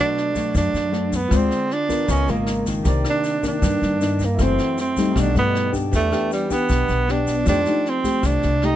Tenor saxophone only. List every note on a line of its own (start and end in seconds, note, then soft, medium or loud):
0.01 0.53 D4 medium
0.58 1.17 D4 medium
1.16 1.39 B3 medium
1.37 1.75 C4 medium
1.73 2.12 D4 medium
2.11 2.32 C#4 medium
2.31 2.68 A#3 medium
3.09 3.43 D4 medium
3.47 4.27 D4 medium
4.25 4.45 A#3 medium
4.44 4.80 C4 medium
4.81 5.22 C4 medium
5.20 5.37 D4 medium
5.38 5.73 B3 medium
5.95 6.30 A3 medium
6.33 6.54 G3 medium
6.52 7.13 B3 medium
7.11 7.48 D4 medium
7.48 7.91 D4 medium
7.89 8.28 C4 medium
8.26 8.67 D4 medium
8.65 8.76 D#4 medium